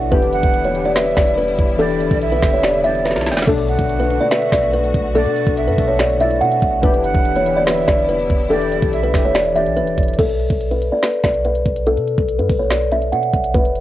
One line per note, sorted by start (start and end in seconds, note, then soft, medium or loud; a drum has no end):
0.00 0.11 B1 loud
0.00 0.14 B2 loud
0.00 6.79 D3 medium
0.00 0.14 A3 medium
0.00 6.79 B3 medium
0.00 0.12 D4 loud
0.00 0.14 E4 medium
0.10 0.34 E1 loud
0.10 0.70 E3 medium
0.10 3.44 G3 medium
0.10 0.71 D4 medium
0.10 3.44 E4 medium
0.10 0.72 G4 loud
0.10 0.61 B4 loud
0.10 kick loud
0.10 closed hi-hat medium
0.22 closed hi-hat medium
0.33 0.43 G1 loud
0.33 0.92 F#5 medium
0.33 closed hi-hat medium
0.43 1.14 E1 loud
0.43 kick medium
0.43 closed hi-hat medium
0.54 closed hi-hat medium
0.64 0.83 C#5 medium
0.64 closed hi-hat medium
0.73 1.53 E3 medium
0.73 1.54 D4 medium
0.73 1.55 G4 medium
0.73 closed hi-hat medium
0.85 0.95 D5 medium
0.95 1.14 B4 medium
0.95 1.35 E5 medium
0.95 finger snap medium
0.95 snare loud
0.95 closed hi-hat medium
1.06 closed hi-hat soft
1.16 1.57 E1 loud
1.16 1.35 D5 medium
1.16 finger snap medium
1.16 kick loud
1.16 snare medium
1.16 closed hi-hat medium
1.27 closed hi-hat medium
1.37 1.77 B4 medium
1.37 closed hi-hat medium
1.48 closed hi-hat medium
1.59 2.09 E1 loud
1.59 kick medium
1.59 closed hi-hat medium
1.78 2.38 E3 loud
1.78 2.39 D4 medium
1.78 2.40 G4 loud
1.78 2.28 A4 loud
1.78 2.19 D5 loud
1.78 closed hi-hat medium
1.90 closed hi-hat medium
2.01 closed hi-hat medium
2.11 2.41 B1 loud
2.11 kick medium
2.11 closed hi-hat medium
2.22 2.81 E5 loud
2.22 closed hi-hat medium
2.32 2.51 B4 medium
2.32 closed hi-hat medium
2.41 3.17 E1 loud
2.41 2.81 E3 medium
2.41 2.82 D4 medium
2.41 2.83 G4 medium
2.41 finger snap medium
2.41 kick loud
2.41 snare loud
2.41 open hi-hat medium
2.54 2.63 C#5 medium
2.63 2.82 D5 medium
2.63 finger snap medium
2.63 snare loud
2.63 closed hi-hat medium
2.74 closed hi-hat soft
2.83 3.43 E3 medium
2.83 3.44 D4 medium
2.83 3.45 G4 medium
2.83 3.44 D5 medium
2.83 3.03 E5 medium
2.83 closed hi-hat medium
2.95 closed hi-hat medium
3.05 3.45 B4 medium
3.05 snare medium
3.05 closed hi-hat medium
3.11 snare medium
3.16 3.33 B1 loud
3.16 snare medium
3.16 closed hi-hat medium
3.21 snare medium
3.26 snare medium
3.26 closed hi-hat medium
3.32 3.47 E1 loud
3.32 snare medium
3.32 closed hi-hat medium
3.37 snare loud
3.37 closed hi-hat medium
3.42 4.06 B2 loud
3.42 snare loud
3.42 closed hi-hat medium
3.47 3.78 B1 loud
3.47 4.07 A3 medium
3.47 6.80 A3 medium
3.47 4.08 D4 loud
3.47 6.80 F#4 medium
3.47 3.97 A4 loud
3.47 kick loud
3.47 crash medium
3.58 closed hi-hat medium
3.68 4.28 F#5 medium
3.68 closed hi-hat medium
3.79 4.19 B1 loud
3.79 kick medium
3.79 closed hi-hat medium
3.89 closed hi-hat medium
4.00 4.19 B4 medium
4.00 closed hi-hat medium
4.08 4.88 B2 medium
4.08 4.89 A3 medium
4.08 4.90 D4 medium
4.08 closed hi-hat medium
4.21 4.30 D5 medium
4.31 4.50 B4 medium
4.31 4.71 E5 medium
4.31 finger snap loud
4.31 snare loud
4.31 closed hi-hat medium
4.42 closed hi-hat soft
4.52 4.93 B1 loud
4.52 4.71 D5 medium
4.52 finger snap medium
4.52 kick loud
4.52 snare medium
4.52 closed hi-hat medium
4.63 closed hi-hat medium
4.73 5.13 B4 medium
4.73 closed hi-hat medium
4.84 closed hi-hat medium
4.94 5.27 B1 loud
4.94 kick medium
4.94 closed hi-hat medium
5.14 5.74 B2 loud
5.14 5.75 A3 medium
5.14 5.76 D4 loud
5.14 5.65 A4 loud
5.14 5.55 D5 loud
5.14 closed hi-hat medium
5.26 5.46 B2 loud
5.26 closed hi-hat medium
5.36 closed hi-hat medium
5.47 5.69 B1 loud
5.47 kick medium
5.47 closed hi-hat medium
5.57 6.16 E5 medium
5.57 closed hi-hat medium
5.68 5.78 F#2 loud
5.68 5.86 B4 medium
5.68 closed hi-hat medium
5.77 6.43 B1 loud
5.77 6.17 B2 medium
5.77 6.18 A3 medium
5.77 6.19 D4 medium
5.77 kick loud
5.77 open hi-hat medium
5.88 5.98 C#5 medium
5.99 6.18 D5 medium
5.99 finger snap medium
5.99 snare loud
5.99 closed hi-hat medium
6.10 closed hi-hat soft
6.18 6.78 B2 medium
6.18 6.79 A3 medium
6.18 6.80 E4 medium
6.18 6.40 D5 medium
6.18 6.39 E5 medium
6.18 closed hi-hat medium
6.31 closed hi-hat medium
6.41 6.61 B2 loud
6.41 6.80 F#5 medium
6.41 closed hi-hat medium
6.52 closed hi-hat medium
6.62 6.82 B1 loud
6.62 kick medium
6.62 closed hi-hat medium
6.82 7.06 E1 loud
6.82 10.15 D3 medium
6.82 7.42 E3 loud
6.82 10.15 G3 medium
6.82 10.15 B3 medium
6.82 7.43 D4 loud
6.82 10.15 E4 medium
6.82 7.44 G4 loud
6.82 7.32 B4 loud
6.82 kick loud
6.82 closed hi-hat medium
6.94 closed hi-hat medium
7.04 7.14 G1 loud
7.04 7.63 F#5 medium
7.04 closed hi-hat medium
7.15 7.85 E1 loud
7.15 kick loud
7.15 closed hi-hat medium
7.25 closed hi-hat medium
7.36 7.55 C#5 medium
7.36 closed hi-hat medium
7.45 8.24 E3 medium
7.45 8.25 D4 medium
7.45 8.26 G4 medium
7.45 closed hi-hat medium
7.57 7.66 D5 medium
7.67 7.86 B4 medium
7.67 8.06 E5 medium
7.67 finger snap medium
7.67 snare loud
7.67 closed hi-hat medium
7.77 closed hi-hat soft
7.88 8.28 E1 loud
7.88 8.07 D5 medium
7.88 finger snap medium
7.88 kick loud
7.88 snare medium
7.88 closed hi-hat medium
7.98 closed hi-hat medium
8.09 8.48 B4 medium
8.09 closed hi-hat medium
8.19 closed hi-hat medium
8.30 8.80 E1 loud
8.30 kick medium
8.30 closed hi-hat medium
8.49 9.09 E3 loud
8.49 9.10 D4 medium
8.49 9.11 G4 loud
8.49 9.00 A4 loud
8.49 8.90 D5 loud
8.49 closed hi-hat medium
8.62 closed hi-hat medium
8.72 closed hi-hat medium
8.82 9.13 B1 loud
8.82 kick loud
8.82 closed hi-hat medium
8.93 9.52 E5 loud
8.93 closed hi-hat medium
9.03 9.22 B4 medium
9.03 closed hi-hat medium
9.12 9.68 E1 loud
9.12 9.52 E3 medium
9.12 9.53 D4 medium
9.12 9.54 G4 medium
9.12 finger snap medium
9.12 kick loud
9.12 snare loud
9.12 open hi-hat medium
9.25 9.34 C#5 medium
9.35 9.54 D5 medium
9.35 finger snap loud
9.35 snare loud
9.35 closed hi-hat medium
9.45 closed hi-hat soft
9.54 10.14 E3 medium
9.54 10.15 D4 medium
9.54 10.16 G4 medium
9.54 10.15 D5 medium
9.54 9.75 E5 medium
9.54 closed hi-hat medium
9.66 9.84 B1 loud
9.66 closed hi-hat medium
9.77 10.16 B4 medium
9.77 closed hi-hat medium
9.82 9.97 E1 loud
9.87 closed hi-hat medium
9.98 10.18 E1 loud
9.98 kick medium
9.98 closed hi-hat medium
10.03 closed hi-hat medium
10.08 closed hi-hat medium
10.14 closed hi-hat medium
10.19 10.49 B1 loud
10.19 10.68 A4 medium
10.19 kick loud
10.19 closed hi-hat medium
10.19 crash loud
10.29 closed hi-hat medium
10.40 closed hi-hat medium
10.50 10.91 B1 loud
10.50 kick medium
10.61 closed hi-hat medium
10.71 10.90 B4 medium
10.71 closed hi-hat medium
10.82 closed hi-hat medium
10.92 11.02 D5 medium
11.03 11.22 B4 medium
11.03 finger snap medium
11.03 snare loud
11.03 closed hi-hat medium
11.13 closed hi-hat soft
11.24 11.64 B1 loud
11.24 11.42 D5 medium
11.24 finger snap medium
11.24 kick medium
11.24 snare medium
11.24 closed hi-hat medium
11.34 closed hi-hat medium
11.45 11.84 B4 medium
11.45 closed hi-hat medium
11.55 closed hi-hat medium
11.66 11.99 B1 loud
11.66 kick medium
11.66 closed hi-hat soft
11.76 closed hi-hat medium
11.87 12.36 A4 loud
11.87 closed hi-hat medium
11.97 12.17 B2 loud
11.97 closed hi-hat medium
12.08 closed hi-hat medium
12.18 12.41 B1 loud
12.18 kick medium
12.29 closed hi-hat medium
12.39 12.49 F#2 loud
12.39 12.58 B4 medium
12.39 closed hi-hat medium
12.50 13.14 B1 loud
12.50 kick loud
12.50 open hi-hat medium
12.59 12.69 C#5 medium
12.71 12.89 D5 medium
12.71 finger snap medium
12.71 snare loud
12.71 closed hi-hat medium
12.81 closed hi-hat soft
12.92 13.11 E5 medium
12.92 closed hi-hat medium
13.02 closed hi-hat medium
13.12 13.32 B2 medium
13.12 13.52 F#5 medium
13.12 closed hi-hat medium
13.23 closed hi-hat medium
13.33 13.54 B1 loud
13.33 kick medium
13.33 closed hi-hat soft
13.44 closed hi-hat medium
13.54 13.77 E1 loud
13.54 13.80 B4 loud
13.54 kick loud
13.54 closed hi-hat medium
13.65 closed hi-hat medium
13.75 13.80 G1 loud
13.75 closed hi-hat medium